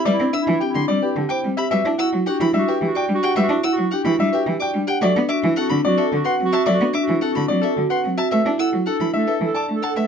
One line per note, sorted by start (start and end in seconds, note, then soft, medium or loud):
0.05 0.16 G3 loud
0.05 0.24 B4 medium
0.05 0.24 D5 loud
0.05 0.16 E5 medium
0.12 0.33 E4 loud
0.19 0.30 C4 medium
0.19 0.32 D4 medium
0.33 0.51 D4 loud
0.33 0.51 E5 medium
0.33 0.44 E6 loud
0.41 0.62 E4 medium
0.47 0.58 E3 loud
0.47 0.65 E4 medium
0.60 0.79 C4 medium
0.60 0.79 G4 medium
0.60 0.71 G5 medium
0.70 0.90 E4 medium
0.74 0.85 D3 medium
0.74 0.92 D4 loud
0.74 0.85 C6 loud
0.88 0.99 G3 loud
0.88 1.06 C4 medium
0.88 1.06 D5 loud
0.98 1.19 E4 medium
0.98 1.20 B4 medium
1.03 1.20 G4 medium
1.16 1.26 D3 medium
1.16 1.34 G4 loud
1.28 1.48 E4 soft
1.28 1.48 C5 loud
1.28 1.47 G5 loud
1.28 1.40 D6 medium
1.44 1.54 G3 medium
1.44 1.61 C4 medium
1.57 1.75 G4 loud
1.57 1.69 E5 medium
1.57 1.68 B5 loud
1.70 1.81 G3 loud
1.70 1.91 F#4 medium
1.70 1.89 B4 medium
1.70 1.81 E5 medium
1.70 1.89 E5 loud
1.85 1.95 D4 medium
1.85 1.98 E4 medium
1.98 2.17 E4 loud
1.98 2.20 F#4 medium
1.98 2.16 F#5 medium
1.98 2.09 E6 loud
2.13 2.23 F#3 loud
2.13 2.30 F#4 medium
2.26 2.44 D4 medium
2.26 2.49 F#4 medium
2.26 2.44 G4 medium
2.26 2.37 F#5 medium
2.40 2.50 E3 medium
2.40 2.58 E4 loud
2.40 2.50 B5 loud
2.53 2.64 G3 loud
2.53 2.71 D4 medium
2.53 2.72 E5 loud
2.58 2.78 F#4 loud
2.68 2.86 G4 medium
2.68 2.85 B4 medium
2.68 2.78 E5 medium
2.82 2.92 E3 medium
2.82 2.99 G4 loud
2.86 3.06 F#4 loud
2.95 3.13 D5 loud
2.95 3.13 G5 loud
2.95 3.05 D6 medium
3.08 3.19 G3 medium
3.08 3.27 D4 medium
3.14 3.35 F#4 loud
3.23 3.40 G4 loud
3.23 3.41 F#5 medium
3.23 3.33 G5 loud
3.36 3.46 G3 loud
3.36 3.54 B4 medium
3.36 3.46 E5 medium
3.36 3.54 E5 loud
3.43 3.64 F#4 loud
3.49 3.60 D4 medium
3.49 3.63 E4 medium
3.63 3.82 E4 loud
3.63 3.82 F#5 medium
3.63 3.74 E6 loud
3.72 3.92 F#4 medium
3.77 3.88 F#3 loud
3.77 3.95 F#4 medium
3.91 4.09 D4 medium
3.91 4.10 G4 medium
3.91 4.01 F#5 medium
4.01 4.15 E3 medium
4.01 4.23 E4 loud
4.01 4.21 F#4 medium
4.01 4.15 B5 loud
4.19 4.29 G3 loud
4.19 4.37 D4 medium
4.19 4.37 E5 loud
4.30 4.50 F#4 medium
4.30 4.50 B4 medium
4.30 4.43 E5 medium
4.34 4.51 G4 medium
4.46 4.57 E3 medium
4.46 4.64 G4 loud
4.59 4.79 F#4 soft
4.59 4.78 D5 loud
4.59 4.79 G5 loud
4.59 4.70 D6 medium
4.74 4.84 G3 medium
4.74 4.92 D4 medium
4.87 5.05 G4 loud
4.87 5.06 F#5 medium
4.87 4.98 G5 loud
5.01 5.12 F#3 loud
5.01 5.21 F#4 medium
5.01 5.20 D5 loud
5.01 5.12 E5 medium
5.15 5.26 B3 medium
5.15 5.28 D4 medium
5.29 5.47 D4 loud
5.29 5.50 F#4 medium
5.29 5.47 E5 medium
5.29 5.39 D6 loud
5.43 5.54 E3 loud
5.43 5.60 E4 medium
5.56 5.74 C4 medium
5.56 5.78 F#4 medium
5.56 5.74 A4 medium
5.56 5.67 F#5 loud
5.69 5.81 D3 medium
5.69 5.88 D4 loud
5.69 5.80 B5 loud
5.84 5.95 F#3 loud
5.84 6.02 C4 medium
5.84 6.08 F#4 medium
5.84 6.02 D5 loud
5.97 6.15 A4 medium
5.97 6.16 A4 medium
5.97 6.08 E5 medium
6.12 6.23 D3 medium
6.12 6.29 F#4 loud
6.12 6.36 F#4 medium
6.24 6.43 B4 loud
6.24 6.43 F#5 loud
6.24 6.35 C6 medium
6.39 6.50 F#3 medium
6.39 6.57 C4 medium
6.45 6.65 F#4 loud
6.52 6.70 F#4 loud
6.52 6.71 E5 medium
6.52 6.63 A5 loud
6.66 6.77 F#3 loud
6.66 6.84 D5 loud
6.66 6.76 E5 medium
6.73 6.94 F#4 loud
6.80 6.91 B3 medium
6.80 6.92 D4 medium
6.93 7.12 D4 loud
6.93 7.12 E5 medium
6.93 7.04 D6 loud
7.02 7.22 F#4 medium
7.08 7.19 E3 medium
7.08 7.26 E4 medium
7.21 7.39 C4 medium
7.21 7.39 A4 medium
7.21 7.32 F#5 medium
7.31 7.51 F#4 medium
7.35 7.46 D3 medium
7.35 7.53 D4 loud
7.35 7.45 B5 loud
7.48 7.60 F#3 loud
7.48 7.67 C4 medium
7.48 7.67 D5 loud
7.60 7.80 F#4 medium
7.60 7.80 A4 medium
7.60 7.81 A4 medium
7.60 7.73 E5 medium
7.77 7.87 D3 medium
7.77 7.94 F#4 loud
7.89 8.09 F#4 soft
7.89 8.08 B4 medium
7.89 8.08 F#5 loud
7.89 8.00 C6 medium
8.04 8.15 F#3 medium
8.04 8.22 C4 medium
8.18 8.36 F#4 loud
8.18 8.30 E5 medium
8.18 8.28 A5 loud
8.31 8.42 A3 loud
8.31 8.52 A4 soft
8.31 8.49 B4 medium
8.31 8.42 E5 medium
8.31 8.50 E5 loud
8.45 8.56 D4 medium
8.45 8.57 E4 medium
8.58 8.77 E4 loud
8.58 8.80 A4 medium
8.58 8.77 F#5 medium
8.58 8.69 E6 loud
8.72 8.83 F#3 loud
8.72 8.90 F#4 medium
8.86 9.04 D4 medium
8.86 9.04 A4 medium
8.86 9.09 A4 medium
8.86 8.97 F#5 medium
9.00 9.11 E3 medium
9.00 9.18 E4 loud
9.00 9.10 B5 loud
9.14 9.24 A3 loud
9.14 9.32 D4 medium
9.14 9.38 A4 medium
9.14 9.32 E5 loud
9.27 9.46 A4 medium
9.27 9.46 B4 medium
9.27 9.38 E5 medium
9.41 9.51 E3 medium
9.41 9.59 A4 medium
9.46 9.67 A4 medium
9.54 9.73 D5 medium
9.54 9.73 A5 loud
9.54 9.65 D6 medium
9.68 9.79 A3 medium
9.68 9.87 D4 medium
9.75 9.95 A4 medium
9.82 10.01 A4 loud
9.82 10.01 F#5 medium
9.82 9.93 A5 loud
9.96 10.06 A3 medium
9.96 10.07 B4 medium
9.96 10.07 E5 medium
10.04 10.07 A4 medium